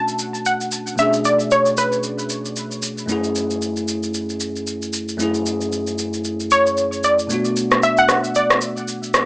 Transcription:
Already playing: B2 A3 C#4 D4 F#4 A5
0.08 shaker
0.19 shaker
0.35 shaker
0.46 F#5, shaker
0.61 shaker
0.72 shaker
0.87 shaker
0.96 B2 A3 C#4 E5, shaker
1.00 D4 G#4
1.13 shaker
1.25 D5, shaker
1.40 shaker
1.51 C#5, shaker
1.66 shaker
1.77 B4, shaker
1.92 shaker
2.03 shaker
2.19 shaker
2.30 shaker
2.45 shaker
2.56 shaker
2.72 shaker
2.82 shaker
2.98 shaker
3.06 F#2 A3 C#4, shaker
3.11 E4 G#4
3.24 shaker
3.35 shaker
3.51 shaker
3.62 shaker
3.77 shaker
3.88 shaker
4.03 shaker
4.14 shaker
4.30 shaker
4.40 shaker
4.56 shaker
4.67 shaker
4.82 shaker
4.93 shaker
5.09 shaker
5.17 F#2 A3 C#4, shaker
5.21 E4 G#4
5.35 shaker
5.46 shaker
5.61 shaker
5.72 shaker
5.87 shaker
5.98 shaker
6.14 shaker
6.25 shaker
6.40 shaker
6.51 C#5, shaker
6.66 shaker
6.77 shaker
6.93 shaker
7.04 D5, shaker
7.19 shaker
7.27 B2 A3 B3, shaker
7.32 D4 F#4
7.45 shaker
7.56 shaker
7.71 cross-stick, shaker
7.83 E5, shaker
7.98 F#5, shaker
8.09 cross-stick, shaker
8.24 shaker
8.35 D5, shaker
8.50 cross-stick, shaker
8.61 shaker
8.77 shaker
8.88 shaker
9.03 shaker
9.14 cross-stick, shaker

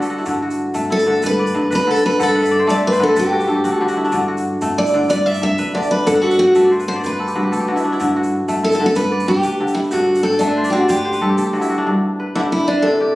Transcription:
Already playing: G2 D3 A3 G4 B4 D5
0.02 A4, shaker
0.10 F#4
0.18 E4, shaker
0.26 G2 D3, shaker
0.42 F#4
0.51 shaker
0.74 G2 A3, shaker
0.82 shaker
0.90 E4 A4, shaker
0.99 shaker
1.07 D3
1.15 shaker
1.22 G2 B4, shaker
1.39 D5
1.47 shaker
1.55 G2
1.70 D2 B4, shaker
1.75 B4
1.87 D3 A4
1.96 shaker
2.06 B4
2.12 shaker
2.20 G2 D3 A4 F#5, shaker
2.28 E5
2.35 F#5, shaker
2.43 E5, shaker
2.51 D5, shaker
2.59 C5
2.67 G2 A3 D5, shaker
2.75 E5, shaker
2.83 B4 D5
2.92 C5, shaker
3.00 D3 A4 B4, shaker
3.08 A4
3.16 G2 G4 B4, shaker
3.24 A4
3.32 F#4
3.40 G4, shaker
3.48 G2 A4
3.55 G4
3.64 D2 F#4, shaker
3.71 F#4 A4
3.81 D3 G4
3.88 F#4, shaker
3.97 E4
4.04 D4, shaker
4.12 G2 D3, shaker
4.28 F#4
4.37 shaker
4.61 G2 A3, shaker
4.70 shaker
4.78 E4 D5
4.86 shaker
4.94 D3
5.03 shaker
5.09 G2 B4 D5, shaker
5.26 D5 E5
5.34 shaker
5.42 G2 E5
5.58 D2 B4, shaker
5.74 D3 D5
5.83 shaker
5.91 B4
5.99 shaker
6.06 G2 D3 A4, shaker
6.14 F#5
6.22 F#4 E5
6.30 F#5, shaker
6.39 F#4 G5
6.47 F#5
6.55 G2 A3 E5, shaker
6.64 D5
6.71 C5, shaker
6.80 B4, shaker
6.88 D3 C5
6.96 D5, shaker
7.04 G2 B4 C5, shaker
7.12 B4
7.20 A4
7.27 G4, shaker
7.35 G2 F#4
7.43 G4
7.52 D2 A4, shaker
7.60 G4, shaker
7.68 D3 F#4
7.76 E4, shaker
7.84 D4
7.92 E4, shaker
8.00 G2 D3, shaker
8.16 F#4
8.24 shaker
8.48 G2 A3, shaker
8.63 E4 A4, shaker
8.72 A4, shaker
8.80 D3
8.86 A4, shaker
8.95 G2 B4, shaker
9.12 D5
9.20 shaker
9.28 G2 G4
9.43 D2 B4, shaker
9.60 D3
9.67 shaker
9.75 E4
9.84 shaker
9.91 G2 D3 F#4, shaker
10.15 F#5, shaker
10.23 A4 G5
10.32 A5, shaker
10.39 G2 A3 D4 A4, shaker
10.48 B4
10.57 C5
10.64 D5, shaker
10.70 D3 F#4 G4 C5
10.81 D5
10.88 G2 G4 C5, shaker
10.96 B4, shaker
11.05 C5
11.13 B4, shaker
11.21 G2 A4
11.29 G4
11.38 D2 A4, shaker
11.46 G4
11.53 D3 F#4, shaker
11.61 E4, shaker
11.70 F#4, shaker
11.78 D4
11.87 G2
12.20 B4
12.35 D3 E4 G4
12.52 E4
12.68 D4 B4
12.82 C3 A4
13.00 G4

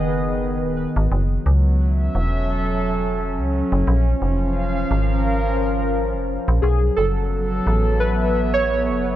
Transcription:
Already playing: F#1 D#3 B3 G#4 B4 D#5
0.62 D#1
0.96 G#1
1.12 F#1 F#3
1.46 C#2
1.66 C#4
1.71 E5
2.11 E1 A4
3.38 C#2
3.72 F#1
3.87 A#1 F3
4.18 F5
4.22 F1
4.78 A#4
4.91 G#1
6.14 F1
6.48 A#1
6.62 B1 F#3 G#4
6.96 F#1 A4
7.02 A4
7.16 B3
7.67 A1
7.76 E5
8.00 B4
8.54 C#5
8.90 F#1

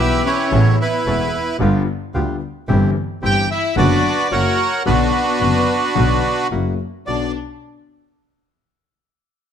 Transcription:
Already playing: B1 B3 E4 G4 B4 E5
0.00 B1 B2 E3 G3 B3 G4
0.25 C#4 E4 C#5
0.51 A1 A2 C#3 A3 B3 C#4 E4 A4
0.80 B3 E4 B4
1.06 E1 E2 C#3 A3 B3 C#4 E4 A4
1.59 G1 G2 D3 G3 B3 F4 G4
2.14 D2 D3 G3 B3 F4 G4
2.68 G1 G2 E3 G3 C4 E4 G4
3.22 G1 G2 E3 G3 C4 E4 G4 G5
3.51 E4 E5
3.76 F#1 F#2 D3 F#3 B3 D4 F#4 B4 D5
4.31 F#1 F#2 C#3 F#3 A#3 E4 F#4 A#4 C#5 F#5
4.85 B1 B2 D3 F#3 B3 D4 F#4 B4
5.40 F#1 F#2 D3 F#3 B3 D4 F#4
5.95 B1 B2 D3 F#3 B3 D4 F#4
6.51 F#1 F#2 C#3 F#3 A#3 E4 F#4
7.06 B1 B3 D4 F#4 D5

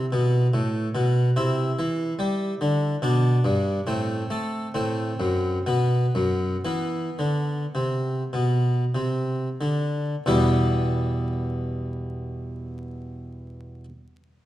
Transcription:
Already playing: E4
0.12 B2
0.53 A2
0.95 B2
1.36 C3 E4
1.79 E3
2.19 G3
2.61 D3
3.02 B2 D4
3.45 G2
3.87 A2 C4
4.30 A3
4.74 A2 C4
5.20 F#2
5.66 B2 B3
6.15 F#2
6.65 E3 B3
7.19 D3
7.75 C3
8.33 B2
8.95 C3
9.61 D3
10.26 E2 B2 G3 B3 E4 G4

